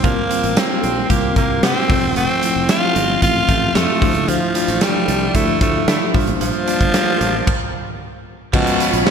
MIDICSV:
0, 0, Header, 1, 7, 480
1, 0, Start_track
1, 0, Key_signature, -1, "major"
1, 0, Tempo, 530973
1, 35, Time_signature, 4, 2, 24, 8
1, 8232, End_track
2, 0, Start_track
2, 0, Title_t, "String machine"
2, 0, Program_c, 0, 50
2, 7715, Note_on_c, 0, 73, 77
2, 7715, Note_on_c, 0, 83, 89
2, 7716, Note_on_c, 0, 65, 86
2, 8232, Note_off_c, 0, 65, 0
2, 8232, Note_off_c, 0, 73, 0
2, 8232, Note_off_c, 0, 83, 0
2, 8232, End_track
3, 0, Start_track
3, 0, Title_t, "Tine electric piano"
3, 0, Program_c, 1, 4
3, 0, Control_c, 1, 64, 127
3, 30, Note_on_c, 1, 55, 68
3, 34, Note_on_c, 1, 58, 63
3, 38, Note_on_c, 1, 60, 60
3, 42, Note_on_c, 1, 65, 76
3, 46, Control_c, 1, 64, 0
3, 180, Note_off_c, 1, 55, 0
3, 182, Note_off_c, 1, 58, 0
3, 184, Note_off_c, 1, 60, 0
3, 186, Note_off_c, 1, 65, 0
3, 229, Control_c, 1, 64, 127
3, 269, Note_on_c, 1, 55, 64
3, 274, Note_on_c, 1, 58, 58
3, 277, Note_on_c, 1, 60, 55
3, 281, Note_on_c, 1, 65, 65
3, 714, Note_off_c, 1, 55, 0
3, 717, Note_off_c, 1, 58, 0
3, 718, Note_off_c, 1, 60, 0
3, 720, Note_off_c, 1, 65, 0
3, 988, Note_on_c, 1, 55, 68
3, 992, Note_on_c, 1, 58, 64
3, 995, Note_on_c, 1, 60, 61
3, 999, Note_on_c, 1, 65, 74
3, 1581, Note_off_c, 1, 55, 0
3, 1583, Note_off_c, 1, 58, 0
3, 1585, Note_off_c, 1, 60, 0
3, 1586, Note_off_c, 1, 65, 0
3, 1709, Note_on_c, 1, 53, 71
3, 1713, Note_on_c, 1, 57, 61
3, 1717, Note_on_c, 1, 60, 68
3, 1720, Note_on_c, 1, 65, 78
3, 1725, Control_c, 1, 64, 0
3, 1897, Control_c, 1, 64, 127
3, 2096, Note_off_c, 1, 53, 0
3, 2098, Note_off_c, 1, 57, 0
3, 2100, Note_off_c, 1, 60, 0
3, 2101, Note_off_c, 1, 65, 0
3, 2191, Note_on_c, 1, 53, 62
3, 2193, Note_on_c, 1, 57, 57
3, 2197, Note_on_c, 1, 60, 56
3, 2201, Note_on_c, 1, 64, 73
3, 2635, Note_off_c, 1, 53, 0
3, 2636, Note_off_c, 1, 57, 0
3, 2638, Note_off_c, 1, 60, 0
3, 2640, Note_off_c, 1, 64, 0
3, 2908, Note_on_c, 1, 53, 64
3, 2913, Note_on_c, 1, 57, 64
3, 2915, Note_on_c, 1, 60, 64
3, 2920, Note_on_c, 1, 65, 71
3, 3501, Note_off_c, 1, 53, 0
3, 3503, Note_off_c, 1, 57, 0
3, 3504, Note_off_c, 1, 60, 0
3, 3507, Note_off_c, 1, 65, 0
3, 3627, Note_on_c, 1, 53, 76
3, 3630, Note_on_c, 1, 57, 70
3, 3633, Note_on_c, 1, 62, 67
3, 3638, Note_on_c, 1, 64, 77
3, 3648, Control_c, 1, 64, 0
3, 3811, Control_c, 1, 64, 127
3, 4015, Note_off_c, 1, 53, 0
3, 4016, Note_off_c, 1, 57, 0
3, 4018, Note_off_c, 1, 62, 0
3, 4020, Note_off_c, 1, 64, 0
3, 4106, Note_on_c, 1, 53, 66
3, 4110, Note_on_c, 1, 57, 57
3, 4113, Note_on_c, 1, 62, 61
3, 4118, Note_on_c, 1, 65, 68
3, 4553, Note_off_c, 1, 53, 0
3, 4555, Note_off_c, 1, 57, 0
3, 4556, Note_off_c, 1, 62, 0
3, 4559, Note_off_c, 1, 65, 0
3, 4829, Note_on_c, 1, 53, 74
3, 4833, Note_on_c, 1, 57, 64
3, 4837, Note_on_c, 1, 62, 65
3, 4839, Note_on_c, 1, 64, 77
3, 5421, Note_off_c, 1, 53, 0
3, 5423, Note_off_c, 1, 57, 0
3, 5425, Note_off_c, 1, 62, 0
3, 5427, Note_off_c, 1, 64, 0
3, 5549, Note_on_c, 1, 55, 72
3, 5552, Note_on_c, 1, 58, 66
3, 5555, Note_on_c, 1, 62, 67
3, 5559, Note_on_c, 1, 65, 79
3, 5568, Control_c, 1, 64, 0
3, 5703, Control_c, 1, 64, 127
3, 5936, Note_off_c, 1, 55, 0
3, 5938, Note_off_c, 1, 58, 0
3, 5939, Note_off_c, 1, 62, 0
3, 5941, Note_off_c, 1, 65, 0
3, 6027, Note_on_c, 1, 55, 63
3, 6031, Note_on_c, 1, 58, 57
3, 6035, Note_on_c, 1, 62, 56
3, 6039, Note_on_c, 1, 65, 70
3, 6473, Note_off_c, 1, 55, 0
3, 6475, Note_off_c, 1, 58, 0
3, 6477, Note_off_c, 1, 62, 0
3, 6479, Note_off_c, 1, 65, 0
3, 6768, Control_c, 1, 64, 0
3, 7709, Note_on_c, 1, 53, 68
3, 7711, Note_on_c, 1, 56, 70
3, 7715, Note_on_c, 1, 59, 69
3, 7717, Note_on_c, 1, 61, 67
3, 7721, Note_on_c, 1, 65, 79
3, 7883, Control_c, 1, 64, 127
3, 8232, Note_off_c, 1, 53, 0
3, 8232, Note_off_c, 1, 56, 0
3, 8232, Note_off_c, 1, 59, 0
3, 8232, Note_off_c, 1, 61, 0
3, 8232, Note_off_c, 1, 65, 0
3, 8232, End_track
4, 0, Start_track
4, 0, Title_t, "Clean electric guitar"
4, 0, Program_c, 2, 27
4, 35, Note_on_c, 2, 53, 82
4, 274, Note_on_c, 2, 60, 57
4, 517, Note_on_c, 2, 58, 59
4, 751, Note_off_c, 2, 60, 0
4, 755, Note_on_c, 2, 60, 57
4, 995, Note_on_c, 2, 67, 63
4, 1225, Note_off_c, 2, 58, 0
4, 1236, Note_on_c, 2, 58, 58
4, 1465, Note_off_c, 2, 67, 0
4, 1476, Note_on_c, 2, 67, 65
4, 1713, Note_off_c, 2, 58, 0
4, 1717, Note_on_c, 2, 57, 79
4, 1763, Note_off_c, 2, 67, 0
4, 1953, Note_off_c, 2, 57, 0
4, 1957, Note_on_c, 2, 57, 86
4, 2192, Note_off_c, 2, 60, 0
4, 2195, Note_on_c, 2, 60, 61
4, 2431, Note_off_c, 2, 57, 0
4, 2435, Note_on_c, 2, 57, 61
4, 2665, Note_off_c, 2, 60, 0
4, 2676, Note_on_c, 2, 60, 59
4, 2915, Note_on_c, 2, 65, 62
4, 3151, Note_off_c, 2, 57, 0
4, 3154, Note_on_c, 2, 57, 56
4, 3199, Note_off_c, 2, 53, 0
4, 3390, Note_off_c, 2, 65, 0
4, 3393, Note_on_c, 2, 65, 62
4, 3634, Note_on_c, 2, 53, 78
4, 3683, Note_off_c, 2, 60, 0
4, 3871, Note_off_c, 2, 53, 0
4, 3874, Note_on_c, 2, 53, 83
4, 4111, Note_off_c, 2, 57, 0
4, 4115, Note_on_c, 2, 55, 58
4, 4142, Note_off_c, 2, 65, 0
4, 4235, Note_off_c, 2, 55, 0
4, 4235, Note_on_c, 2, 57, 51
4, 4352, Note_off_c, 2, 53, 0
4, 4355, Note_on_c, 2, 53, 60
4, 4583, Note_off_c, 2, 57, 0
4, 4594, Note_on_c, 2, 57, 58
4, 4833, Note_on_c, 2, 64, 62
4, 5063, Note_off_c, 2, 53, 0
4, 5074, Note_on_c, 2, 53, 58
4, 5303, Note_off_c, 2, 64, 0
4, 5314, Note_on_c, 2, 64, 68
4, 5543, Note_off_c, 2, 53, 0
4, 5553, Note_on_c, 2, 53, 81
4, 5602, Note_off_c, 2, 57, 0
4, 5603, Note_off_c, 2, 64, 0
4, 5783, Note_off_c, 2, 53, 0
4, 5794, Note_on_c, 2, 53, 83
4, 6035, Note_on_c, 2, 62, 60
4, 6274, Note_on_c, 2, 58, 62
4, 6504, Note_off_c, 2, 62, 0
4, 6515, Note_on_c, 2, 62, 57
4, 6802, Note_off_c, 2, 53, 0
4, 6802, Note_off_c, 2, 58, 0
4, 6803, Note_off_c, 2, 62, 0
4, 7714, Note_on_c, 2, 53, 91
4, 7953, Note_on_c, 2, 59, 67
4, 8194, Note_on_c, 2, 61, 67
4, 8232, Note_off_c, 2, 53, 0
4, 8232, Note_off_c, 2, 59, 0
4, 8232, Note_off_c, 2, 61, 0
4, 8232, End_track
5, 0, Start_track
5, 0, Title_t, "Tenor saxophone"
5, 0, Program_c, 3, 66
5, 41, Note_on_c, 3, 58, 91
5, 521, Note_on_c, 3, 60, 88
5, 535, Note_off_c, 3, 58, 0
5, 1002, Note_on_c, 3, 58, 92
5, 1016, Note_off_c, 3, 60, 0
5, 1236, Note_off_c, 3, 58, 0
5, 1241, Note_on_c, 3, 58, 88
5, 1462, Note_off_c, 3, 58, 0
5, 1480, Note_on_c, 3, 60, 98
5, 1924, Note_off_c, 3, 60, 0
5, 1962, Note_on_c, 3, 60, 101
5, 2405, Note_off_c, 3, 60, 0
5, 2438, Note_on_c, 3, 65, 103
5, 2883, Note_off_c, 3, 65, 0
5, 2919, Note_on_c, 3, 65, 106
5, 3396, Note_on_c, 3, 57, 95
5, 3410, Note_off_c, 3, 65, 0
5, 3875, Note_on_c, 3, 53, 93
5, 3888, Note_off_c, 3, 57, 0
5, 4358, Note_on_c, 3, 55, 86
5, 4372, Note_off_c, 3, 53, 0
5, 4839, Note_on_c, 3, 57, 88
5, 4852, Note_off_c, 3, 55, 0
5, 5074, Note_off_c, 3, 57, 0
5, 5079, Note_on_c, 3, 57, 86
5, 5300, Note_off_c, 3, 57, 0
5, 5318, Note_on_c, 3, 57, 75
5, 5540, Note_off_c, 3, 57, 0
5, 5798, Note_on_c, 3, 53, 125
5, 7200, Note_off_c, 3, 53, 0
5, 7719, Note_on_c, 3, 47, 112
5, 8163, Note_off_c, 3, 47, 0
5, 8232, End_track
6, 0, Start_track
6, 0, Title_t, "Fretless electric bass"
6, 0, Program_c, 4, 35
6, 37, Note_on_c, 4, 36, 89
6, 126, Note_off_c, 4, 36, 0
6, 396, Note_on_c, 4, 33, 86
6, 486, Note_off_c, 4, 33, 0
6, 755, Note_on_c, 4, 34, 74
6, 935, Note_off_c, 4, 34, 0
6, 995, Note_on_c, 4, 36, 85
6, 1175, Note_off_c, 4, 36, 0
6, 1233, Note_on_c, 4, 36, 87
6, 1414, Note_off_c, 4, 36, 0
6, 1475, Note_on_c, 4, 48, 93
6, 1565, Note_off_c, 4, 48, 0
6, 1715, Note_on_c, 4, 29, 78
6, 1805, Note_off_c, 4, 29, 0
6, 1834, Note_on_c, 4, 28, 73
6, 1925, Note_off_c, 4, 28, 0
6, 1955, Note_on_c, 4, 29, 94
6, 2045, Note_off_c, 4, 29, 0
6, 2315, Note_on_c, 4, 29, 80
6, 2405, Note_off_c, 4, 29, 0
6, 2676, Note_on_c, 4, 31, 89
6, 2856, Note_off_c, 4, 31, 0
6, 2913, Note_on_c, 4, 33, 90
6, 3094, Note_off_c, 4, 33, 0
6, 3152, Note_on_c, 4, 33, 89
6, 3333, Note_off_c, 4, 33, 0
6, 3394, Note_on_c, 4, 41, 95
6, 3485, Note_off_c, 4, 41, 0
6, 3634, Note_on_c, 4, 38, 86
6, 3725, Note_off_c, 4, 38, 0
6, 3755, Note_on_c, 4, 37, 84
6, 3845, Note_off_c, 4, 37, 0
6, 3873, Note_on_c, 4, 38, 101
6, 3964, Note_off_c, 4, 38, 0
6, 4233, Note_on_c, 4, 33, 76
6, 4324, Note_off_c, 4, 33, 0
6, 4594, Note_on_c, 4, 36, 80
6, 4774, Note_off_c, 4, 36, 0
6, 4834, Note_on_c, 4, 38, 90
6, 5014, Note_off_c, 4, 38, 0
6, 5073, Note_on_c, 4, 38, 84
6, 5254, Note_off_c, 4, 38, 0
6, 5315, Note_on_c, 4, 50, 86
6, 5405, Note_off_c, 4, 50, 0
6, 5556, Note_on_c, 4, 34, 80
6, 5645, Note_off_c, 4, 34, 0
6, 5676, Note_on_c, 4, 33, 86
6, 5766, Note_off_c, 4, 33, 0
6, 5795, Note_on_c, 4, 34, 92
6, 5885, Note_off_c, 4, 34, 0
6, 6153, Note_on_c, 4, 31, 77
6, 6244, Note_off_c, 4, 31, 0
6, 6516, Note_on_c, 4, 33, 85
6, 6696, Note_off_c, 4, 33, 0
6, 7717, Note_on_c, 4, 37, 96
6, 7806, Note_off_c, 4, 37, 0
6, 8077, Note_on_c, 4, 34, 88
6, 8166, Note_off_c, 4, 34, 0
6, 8232, End_track
7, 0, Start_track
7, 0, Title_t, "Drums"
7, 36, Note_on_c, 9, 36, 94
7, 36, Note_on_c, 9, 42, 68
7, 127, Note_off_c, 9, 36, 0
7, 127, Note_off_c, 9, 42, 0
7, 277, Note_on_c, 9, 42, 77
7, 367, Note_off_c, 9, 42, 0
7, 394, Note_on_c, 9, 42, 45
7, 485, Note_off_c, 9, 42, 0
7, 512, Note_on_c, 9, 42, 82
7, 516, Note_on_c, 9, 38, 108
7, 603, Note_off_c, 9, 42, 0
7, 606, Note_off_c, 9, 38, 0
7, 756, Note_on_c, 9, 42, 61
7, 846, Note_off_c, 9, 42, 0
7, 994, Note_on_c, 9, 36, 90
7, 995, Note_on_c, 9, 42, 87
7, 1085, Note_off_c, 9, 36, 0
7, 1085, Note_off_c, 9, 42, 0
7, 1232, Note_on_c, 9, 36, 91
7, 1232, Note_on_c, 9, 42, 74
7, 1322, Note_off_c, 9, 42, 0
7, 1323, Note_off_c, 9, 36, 0
7, 1474, Note_on_c, 9, 42, 77
7, 1475, Note_on_c, 9, 38, 102
7, 1564, Note_off_c, 9, 42, 0
7, 1565, Note_off_c, 9, 38, 0
7, 1714, Note_on_c, 9, 36, 102
7, 1717, Note_on_c, 9, 46, 69
7, 1805, Note_off_c, 9, 36, 0
7, 1807, Note_off_c, 9, 46, 0
7, 1954, Note_on_c, 9, 42, 68
7, 2045, Note_off_c, 9, 42, 0
7, 2194, Note_on_c, 9, 42, 78
7, 2285, Note_off_c, 9, 42, 0
7, 2430, Note_on_c, 9, 42, 89
7, 2434, Note_on_c, 9, 38, 109
7, 2520, Note_off_c, 9, 42, 0
7, 2524, Note_off_c, 9, 38, 0
7, 2674, Note_on_c, 9, 42, 65
7, 2765, Note_off_c, 9, 42, 0
7, 2913, Note_on_c, 9, 36, 89
7, 2914, Note_on_c, 9, 42, 89
7, 3003, Note_off_c, 9, 36, 0
7, 3004, Note_off_c, 9, 42, 0
7, 3151, Note_on_c, 9, 42, 74
7, 3152, Note_on_c, 9, 36, 90
7, 3242, Note_off_c, 9, 36, 0
7, 3242, Note_off_c, 9, 42, 0
7, 3393, Note_on_c, 9, 38, 104
7, 3393, Note_on_c, 9, 42, 73
7, 3483, Note_off_c, 9, 42, 0
7, 3484, Note_off_c, 9, 38, 0
7, 3634, Note_on_c, 9, 36, 96
7, 3635, Note_on_c, 9, 46, 72
7, 3724, Note_off_c, 9, 36, 0
7, 3725, Note_off_c, 9, 46, 0
7, 3751, Note_on_c, 9, 42, 46
7, 3841, Note_off_c, 9, 42, 0
7, 3873, Note_on_c, 9, 42, 70
7, 3964, Note_off_c, 9, 42, 0
7, 4114, Note_on_c, 9, 42, 76
7, 4205, Note_off_c, 9, 42, 0
7, 4233, Note_on_c, 9, 42, 47
7, 4323, Note_off_c, 9, 42, 0
7, 4349, Note_on_c, 9, 42, 89
7, 4353, Note_on_c, 9, 38, 105
7, 4439, Note_off_c, 9, 42, 0
7, 4443, Note_off_c, 9, 38, 0
7, 4596, Note_on_c, 9, 42, 63
7, 4686, Note_off_c, 9, 42, 0
7, 4833, Note_on_c, 9, 36, 86
7, 4833, Note_on_c, 9, 42, 90
7, 4924, Note_off_c, 9, 36, 0
7, 4924, Note_off_c, 9, 42, 0
7, 5072, Note_on_c, 9, 36, 90
7, 5072, Note_on_c, 9, 42, 70
7, 5162, Note_off_c, 9, 42, 0
7, 5163, Note_off_c, 9, 36, 0
7, 5314, Note_on_c, 9, 42, 81
7, 5315, Note_on_c, 9, 38, 107
7, 5404, Note_off_c, 9, 42, 0
7, 5405, Note_off_c, 9, 38, 0
7, 5555, Note_on_c, 9, 36, 101
7, 5557, Note_on_c, 9, 46, 70
7, 5645, Note_off_c, 9, 36, 0
7, 5647, Note_off_c, 9, 46, 0
7, 5672, Note_on_c, 9, 42, 50
7, 5763, Note_off_c, 9, 42, 0
7, 5795, Note_on_c, 9, 42, 73
7, 5885, Note_off_c, 9, 42, 0
7, 6035, Note_on_c, 9, 42, 75
7, 6125, Note_off_c, 9, 42, 0
7, 6153, Note_on_c, 9, 36, 80
7, 6155, Note_on_c, 9, 42, 45
7, 6244, Note_off_c, 9, 36, 0
7, 6245, Note_off_c, 9, 42, 0
7, 6272, Note_on_c, 9, 42, 89
7, 6275, Note_on_c, 9, 38, 105
7, 6362, Note_off_c, 9, 42, 0
7, 6366, Note_off_c, 9, 38, 0
7, 6518, Note_on_c, 9, 42, 62
7, 6608, Note_off_c, 9, 42, 0
7, 6756, Note_on_c, 9, 36, 107
7, 6756, Note_on_c, 9, 49, 87
7, 6846, Note_off_c, 9, 36, 0
7, 6847, Note_off_c, 9, 49, 0
7, 7716, Note_on_c, 9, 36, 99
7, 7716, Note_on_c, 9, 49, 95
7, 7806, Note_off_c, 9, 36, 0
7, 7806, Note_off_c, 9, 49, 0
7, 7838, Note_on_c, 9, 42, 52
7, 7928, Note_off_c, 9, 42, 0
7, 7958, Note_on_c, 9, 42, 82
7, 8048, Note_off_c, 9, 42, 0
7, 8076, Note_on_c, 9, 42, 51
7, 8166, Note_off_c, 9, 42, 0
7, 8195, Note_on_c, 9, 54, 61
7, 8196, Note_on_c, 9, 38, 113
7, 8232, Note_off_c, 9, 38, 0
7, 8232, Note_off_c, 9, 54, 0
7, 8232, End_track
0, 0, End_of_file